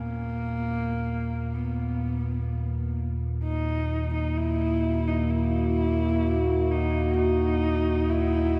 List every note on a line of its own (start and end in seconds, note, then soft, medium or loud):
0.00 8.60 D#2 medium
0.00 8.60 A#2 medium
0.00 1.55 A#3 loud
1.54 2.96 B3 medium
3.43 8.60 A#3 medium
3.43 4.10 D#4 medium
3.79 8.60 F#4 medium
4.14 4.39 D#4 medium
4.38 5.09 E4 loud
5.00 8.60 F#5 medium
5.08 5.32 D#4 medium
5.31 6.73 E4 medium
6.00 8.60 D#5 medium
6.71 7.16 D#4 medium
7.17 8.11 D#4 loud
8.10 8.60 E4 medium